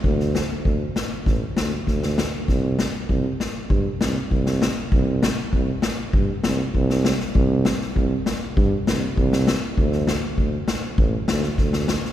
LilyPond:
<<
  \new Staff \with { instrumentName = "Tuba" } { \clef bass \time 4/4 \tempo 4 = 99 d,4 d,8 r8 a,,8 d,8 d,4 | c,4 c,8 r8 g,8 c,8 c,4 | c,4 c,8 r8 g,8 c,8 c,4 | c,4 c,8 r8 g,8 c,8 c,4 |
d,4 d,8 r8 a,,8 d,8 d,4 | }
  \new DrumStaff \with { instrumentName = "Drums" } \drummode { \time 4/4 bd16 sn16 sn8 bd8 sn8 <bd sn>8 sn8 <bd sn>16 sn16 sn8 | <bd sn>8 sn8 bd8 sn8 bd8 sn8 bd16 sn16 sn8 | bd8 sn8 bd8 sn8 bd8 sn8 bd16 sn16 sn16 sn16 | bd8 sn16 sn16 bd8 sn8 bd8 sn8 bd16 sn16 sn8 |
bd16 sn16 sn8 bd8 sn8 bd8 sn16 sn16 <bd sn>16 sn16 sn16 sn16 | }
>>